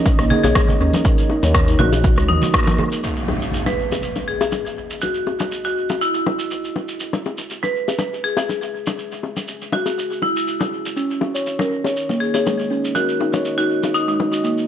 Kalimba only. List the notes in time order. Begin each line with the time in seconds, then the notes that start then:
0.19 A#3
0.44 C#5
0.55 G#3
0.80 C#4
1.05 A#4
1.30 D#4
1.44 C#5
1.68 D#4
1.93 F#4
2.18 G#3
2.42 F#4
2.54 A#3
2.79 G#4
10.96 C#4
11.21 F#4
11.35 C#5
11.60 C#4
11.85 C#5
12.09 A#3
12.34 C#5
12.46 G#3
12.70 C#4
12.95 A#4
13.20 D#4
13.33 C#5
13.58 D#4
13.82 F#4
14.07 G#3
14.32 F#4
14.44 A#3